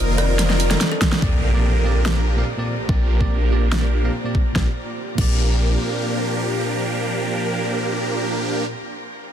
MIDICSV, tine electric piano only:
0, 0, Header, 1, 2, 480
1, 0, Start_track
1, 0, Key_signature, -2, "major"
1, 0, Tempo, 416667
1, 1410, Time_signature, 4, 2, 24, 8
1, 10742, End_track
2, 0, Start_track
2, 0, Title_t, "Tine electric piano"
2, 0, Program_c, 0, 4
2, 1397, Note_on_c, 0, 46, 82
2, 1404, Note_on_c, 0, 58, 73
2, 1409, Note_on_c, 0, 60, 73
2, 1415, Note_on_c, 0, 67, 73
2, 1421, Note_on_c, 0, 74, 89
2, 1595, Note_off_c, 0, 46, 0
2, 1599, Note_off_c, 0, 58, 0
2, 1601, Note_off_c, 0, 60, 0
2, 1604, Note_off_c, 0, 67, 0
2, 1607, Note_off_c, 0, 74, 0
2, 1761, Note_on_c, 0, 46, 77
2, 1767, Note_on_c, 0, 58, 71
2, 1773, Note_on_c, 0, 60, 73
2, 1778, Note_on_c, 0, 67, 73
2, 1784, Note_on_c, 0, 74, 89
2, 1956, Note_off_c, 0, 46, 0
2, 1959, Note_off_c, 0, 58, 0
2, 1962, Note_off_c, 0, 60, 0
2, 1964, Note_off_c, 0, 67, 0
2, 1967, Note_off_c, 0, 74, 0
2, 2117, Note_on_c, 0, 46, 75
2, 2123, Note_on_c, 0, 58, 70
2, 2129, Note_on_c, 0, 60, 70
2, 2134, Note_on_c, 0, 67, 72
2, 2140, Note_on_c, 0, 74, 85
2, 2315, Note_off_c, 0, 46, 0
2, 2318, Note_off_c, 0, 58, 0
2, 2321, Note_off_c, 0, 60, 0
2, 2324, Note_off_c, 0, 67, 0
2, 2327, Note_off_c, 0, 74, 0
2, 2358, Note_on_c, 0, 46, 74
2, 2364, Note_on_c, 0, 58, 66
2, 2370, Note_on_c, 0, 60, 67
2, 2375, Note_on_c, 0, 67, 68
2, 2381, Note_on_c, 0, 74, 79
2, 2487, Note_off_c, 0, 46, 0
2, 2490, Note_off_c, 0, 58, 0
2, 2493, Note_off_c, 0, 60, 0
2, 2495, Note_off_c, 0, 67, 0
2, 2498, Note_off_c, 0, 74, 0
2, 2721, Note_on_c, 0, 46, 70
2, 2727, Note_on_c, 0, 58, 63
2, 2733, Note_on_c, 0, 60, 61
2, 2739, Note_on_c, 0, 67, 63
2, 2745, Note_on_c, 0, 77, 76
2, 2842, Note_off_c, 0, 46, 0
2, 2845, Note_off_c, 0, 58, 0
2, 2848, Note_off_c, 0, 60, 0
2, 2851, Note_off_c, 0, 67, 0
2, 2854, Note_off_c, 0, 77, 0
2, 2962, Note_on_c, 0, 46, 72
2, 2967, Note_on_c, 0, 58, 67
2, 2973, Note_on_c, 0, 60, 66
2, 2979, Note_on_c, 0, 67, 67
2, 2985, Note_on_c, 0, 74, 80
2, 3156, Note_off_c, 0, 46, 0
2, 3159, Note_off_c, 0, 58, 0
2, 3162, Note_off_c, 0, 60, 0
2, 3165, Note_off_c, 0, 67, 0
2, 3168, Note_off_c, 0, 74, 0
2, 3318, Note_on_c, 0, 46, 80
2, 3324, Note_on_c, 0, 58, 73
2, 3329, Note_on_c, 0, 60, 74
2, 3335, Note_on_c, 0, 67, 75
2, 3341, Note_on_c, 0, 74, 87
2, 3515, Note_off_c, 0, 46, 0
2, 3519, Note_off_c, 0, 58, 0
2, 3521, Note_off_c, 0, 60, 0
2, 3524, Note_off_c, 0, 67, 0
2, 3527, Note_off_c, 0, 74, 0
2, 3682, Note_on_c, 0, 46, 79
2, 3688, Note_on_c, 0, 58, 71
2, 3694, Note_on_c, 0, 60, 73
2, 3700, Note_on_c, 0, 67, 72
2, 3705, Note_on_c, 0, 74, 86
2, 3876, Note_off_c, 0, 46, 0
2, 3879, Note_off_c, 0, 58, 0
2, 3882, Note_off_c, 0, 60, 0
2, 3885, Note_off_c, 0, 67, 0
2, 3888, Note_off_c, 0, 74, 0
2, 4038, Note_on_c, 0, 46, 75
2, 4044, Note_on_c, 0, 58, 69
2, 4050, Note_on_c, 0, 60, 66
2, 4055, Note_on_c, 0, 67, 69
2, 4061, Note_on_c, 0, 74, 83
2, 4236, Note_off_c, 0, 46, 0
2, 4238, Note_off_c, 0, 58, 0
2, 4242, Note_off_c, 0, 60, 0
2, 4244, Note_off_c, 0, 67, 0
2, 4247, Note_off_c, 0, 74, 0
2, 4277, Note_on_c, 0, 46, 70
2, 4283, Note_on_c, 0, 58, 65
2, 4289, Note_on_c, 0, 60, 64
2, 4295, Note_on_c, 0, 67, 66
2, 4300, Note_on_c, 0, 74, 78
2, 4406, Note_off_c, 0, 46, 0
2, 4409, Note_off_c, 0, 58, 0
2, 4412, Note_off_c, 0, 60, 0
2, 4415, Note_off_c, 0, 67, 0
2, 4418, Note_off_c, 0, 74, 0
2, 4642, Note_on_c, 0, 46, 68
2, 4648, Note_on_c, 0, 58, 61
2, 4654, Note_on_c, 0, 60, 60
2, 4659, Note_on_c, 0, 67, 62
2, 4665, Note_on_c, 0, 77, 72
2, 4762, Note_off_c, 0, 46, 0
2, 4765, Note_off_c, 0, 58, 0
2, 4768, Note_off_c, 0, 60, 0
2, 4771, Note_off_c, 0, 67, 0
2, 4774, Note_off_c, 0, 77, 0
2, 4882, Note_on_c, 0, 46, 69
2, 4887, Note_on_c, 0, 58, 62
2, 4894, Note_on_c, 0, 60, 65
2, 4899, Note_on_c, 0, 67, 65
2, 4905, Note_on_c, 0, 74, 78
2, 5076, Note_off_c, 0, 46, 0
2, 5079, Note_off_c, 0, 58, 0
2, 5082, Note_off_c, 0, 60, 0
2, 5085, Note_off_c, 0, 67, 0
2, 5088, Note_off_c, 0, 74, 0
2, 5215, Note_on_c, 0, 46, 76
2, 5232, Note_on_c, 0, 58, 69
2, 5249, Note_on_c, 0, 60, 69
2, 5266, Note_on_c, 0, 67, 69
2, 5284, Note_on_c, 0, 74, 82
2, 5368, Note_off_c, 0, 46, 0
2, 5377, Note_off_c, 0, 58, 0
2, 5386, Note_off_c, 0, 60, 0
2, 5396, Note_off_c, 0, 67, 0
2, 5405, Note_off_c, 0, 74, 0
2, 5933, Note_on_c, 0, 46, 75
2, 5950, Note_on_c, 0, 58, 68
2, 5968, Note_on_c, 0, 60, 71
2, 5985, Note_on_c, 0, 67, 69
2, 6002, Note_on_c, 0, 74, 84
2, 10055, Note_off_c, 0, 46, 0
2, 10072, Note_off_c, 0, 58, 0
2, 10090, Note_off_c, 0, 60, 0
2, 10107, Note_off_c, 0, 67, 0
2, 10124, Note_off_c, 0, 74, 0
2, 10742, End_track
0, 0, End_of_file